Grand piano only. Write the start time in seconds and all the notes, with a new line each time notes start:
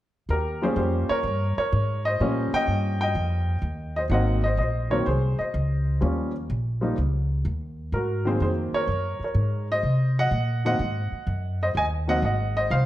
0.30 G4 A#4
0.62 F3 G3 A#3 C#4 G#4 C5
0.77 G4 C5
1.09 A#4 C#5
1.58 A#4 C#5
2.05 C5 D#5
2.21 F3 G3 A#3 C#4
2.54 D#5 G5
3.01 D#5 G5
3.96 C5 D#5
4.10 D#3 F#3 A#3 C4 D#5 F#5
4.44 C5 D#5
4.58 C5 D#5
4.90 D#3 F#3 A#3 C4 A#4 C#5
5.06 G#4 C5
5.39 C5 D#5
6.01 F3 G3 A#3 C#4
6.81 F3 G3 A#3 D#4
7.94 F#4 A#4
8.25 D#3 F#3 A#3 C4 G#4 C5
8.42 G#4 C5
8.74 A#4 C#5
9.24 A#4 C#5
9.72 C5 D#5
10.19 D#5 F#5
10.65 D#3 F#3 A#3 C4 D#5 F#5
11.63 C5 D#5
11.77 D#5 G#5
12.07 D#3 F#3 A#3 C4 D#5 F#5
12.25 D#5 F#5
12.57 C5 D#5
12.71 C5 F5